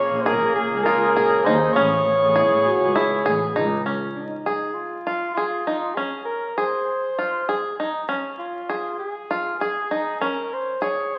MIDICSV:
0, 0, Header, 1, 6, 480
1, 0, Start_track
1, 0, Key_signature, -5, "major"
1, 0, Tempo, 600000
1, 1402, Time_signature, 7, 3, 24, 8
1, 3567, Tempo, 605449
1, 8900, End_track
2, 0, Start_track
2, 0, Title_t, "Soprano saxophone"
2, 0, Program_c, 0, 64
2, 0, Note_on_c, 0, 73, 106
2, 170, Note_on_c, 0, 72, 66
2, 182, Note_off_c, 0, 73, 0
2, 209, Note_on_c, 0, 70, 88
2, 221, Note_off_c, 0, 72, 0
2, 438, Note_off_c, 0, 70, 0
2, 442, Note_on_c, 0, 68, 90
2, 668, Note_on_c, 0, 70, 94
2, 680, Note_off_c, 0, 68, 0
2, 1155, Note_on_c, 0, 72, 92
2, 1167, Note_off_c, 0, 70, 0
2, 1384, Note_on_c, 0, 73, 97
2, 1396, Note_off_c, 0, 72, 0
2, 2834, Note_off_c, 0, 73, 0
2, 3320, Note_on_c, 0, 63, 53
2, 3790, Note_on_c, 0, 65, 64
2, 3802, Note_off_c, 0, 63, 0
2, 4265, Note_off_c, 0, 65, 0
2, 4270, Note_on_c, 0, 65, 60
2, 4746, Note_on_c, 0, 68, 67
2, 4758, Note_off_c, 0, 65, 0
2, 4985, Note_off_c, 0, 68, 0
2, 4989, Note_on_c, 0, 70, 61
2, 5241, Note_on_c, 0, 72, 66
2, 5253, Note_off_c, 0, 70, 0
2, 6204, Note_off_c, 0, 72, 0
2, 6684, Note_on_c, 0, 65, 58
2, 7134, Note_off_c, 0, 65, 0
2, 7158, Note_on_c, 0, 68, 61
2, 7611, Note_off_c, 0, 68, 0
2, 7643, Note_on_c, 0, 68, 61
2, 8134, Note_on_c, 0, 70, 68
2, 8146, Note_off_c, 0, 68, 0
2, 8383, Note_on_c, 0, 72, 61
2, 8395, Note_off_c, 0, 70, 0
2, 8613, Note_off_c, 0, 72, 0
2, 8618, Note_on_c, 0, 73, 62
2, 8874, Note_on_c, 0, 72, 65
2, 8886, Note_off_c, 0, 73, 0
2, 8900, Note_off_c, 0, 72, 0
2, 8900, End_track
3, 0, Start_track
3, 0, Title_t, "French horn"
3, 0, Program_c, 1, 60
3, 1882, Note_on_c, 1, 64, 80
3, 2124, Note_on_c, 1, 66, 86
3, 2136, Note_off_c, 1, 64, 0
3, 2363, Note_off_c, 1, 66, 0
3, 2369, Note_on_c, 1, 68, 88
3, 3055, Note_off_c, 1, 68, 0
3, 8900, End_track
4, 0, Start_track
4, 0, Title_t, "Five-string banjo"
4, 0, Program_c, 2, 105
4, 0, Note_on_c, 2, 61, 80
4, 132, Note_off_c, 2, 61, 0
4, 208, Note_on_c, 2, 68, 79
4, 613, Note_off_c, 2, 68, 0
4, 685, Note_on_c, 2, 65, 77
4, 888, Note_off_c, 2, 65, 0
4, 932, Note_on_c, 2, 68, 75
4, 1131, Note_off_c, 2, 68, 0
4, 1170, Note_on_c, 2, 63, 83
4, 1370, Note_off_c, 2, 63, 0
4, 1408, Note_on_c, 2, 61, 87
4, 1812, Note_off_c, 2, 61, 0
4, 1884, Note_on_c, 2, 68, 80
4, 2290, Note_off_c, 2, 68, 0
4, 2364, Note_on_c, 2, 64, 76
4, 2567, Note_off_c, 2, 64, 0
4, 2605, Note_on_c, 2, 68, 75
4, 2808, Note_off_c, 2, 68, 0
4, 2847, Note_on_c, 2, 63, 72
4, 3050, Note_off_c, 2, 63, 0
4, 3087, Note_on_c, 2, 61, 52
4, 3495, Note_off_c, 2, 61, 0
4, 3569, Note_on_c, 2, 68, 54
4, 3974, Note_off_c, 2, 68, 0
4, 4049, Note_on_c, 2, 65, 53
4, 4251, Note_off_c, 2, 65, 0
4, 4291, Note_on_c, 2, 68, 52
4, 4492, Note_off_c, 2, 68, 0
4, 4528, Note_on_c, 2, 63, 55
4, 4730, Note_off_c, 2, 63, 0
4, 4766, Note_on_c, 2, 61, 60
4, 5173, Note_off_c, 2, 61, 0
4, 5246, Note_on_c, 2, 68, 56
4, 5653, Note_off_c, 2, 68, 0
4, 5728, Note_on_c, 2, 65, 57
4, 5931, Note_off_c, 2, 65, 0
4, 5968, Note_on_c, 2, 68, 58
4, 6171, Note_off_c, 2, 68, 0
4, 6213, Note_on_c, 2, 63, 54
4, 6414, Note_off_c, 2, 63, 0
4, 6443, Note_on_c, 2, 61, 64
4, 6852, Note_off_c, 2, 61, 0
4, 6925, Note_on_c, 2, 68, 56
4, 7333, Note_off_c, 2, 68, 0
4, 7410, Note_on_c, 2, 65, 61
4, 7612, Note_off_c, 2, 65, 0
4, 7653, Note_on_c, 2, 68, 60
4, 7854, Note_off_c, 2, 68, 0
4, 7889, Note_on_c, 2, 63, 56
4, 8092, Note_off_c, 2, 63, 0
4, 8129, Note_on_c, 2, 61, 62
4, 8536, Note_off_c, 2, 61, 0
4, 8607, Note_on_c, 2, 68, 58
4, 8900, Note_off_c, 2, 68, 0
4, 8900, End_track
5, 0, Start_track
5, 0, Title_t, "Woodwind section"
5, 0, Program_c, 3, 71
5, 0, Note_on_c, 3, 49, 79
5, 0, Note_on_c, 3, 58, 70
5, 0, Note_on_c, 3, 68, 95
5, 1388, Note_off_c, 3, 58, 0
5, 1388, Note_off_c, 3, 68, 0
5, 1408, Note_on_c, 3, 68, 89
5, 1412, Note_on_c, 3, 59, 72
5, 3055, Note_off_c, 3, 49, 0
5, 3070, Note_off_c, 3, 68, 0
5, 3072, Note_off_c, 3, 59, 0
5, 8900, End_track
6, 0, Start_track
6, 0, Title_t, "Double bass"
6, 0, Program_c, 4, 43
6, 85, Note_on_c, 4, 34, 97
6, 325, Note_on_c, 4, 46, 80
6, 337, Note_off_c, 4, 34, 0
6, 538, Note_off_c, 4, 46, 0
6, 568, Note_on_c, 4, 37, 73
6, 779, Note_off_c, 4, 37, 0
6, 921, Note_on_c, 4, 34, 81
6, 1028, Note_off_c, 4, 34, 0
6, 1162, Note_on_c, 4, 39, 101
6, 1376, Note_off_c, 4, 39, 0
6, 1403, Note_on_c, 4, 33, 86
6, 1616, Note_off_c, 4, 33, 0
6, 1764, Note_on_c, 4, 33, 85
6, 2002, Note_on_c, 4, 45, 82
6, 2014, Note_off_c, 4, 33, 0
6, 2216, Note_off_c, 4, 45, 0
6, 2248, Note_on_c, 4, 37, 73
6, 2459, Note_off_c, 4, 37, 0
6, 2603, Note_on_c, 4, 33, 82
6, 2710, Note_off_c, 4, 33, 0
6, 2848, Note_on_c, 4, 37, 93
6, 3060, Note_off_c, 4, 37, 0
6, 8900, End_track
0, 0, End_of_file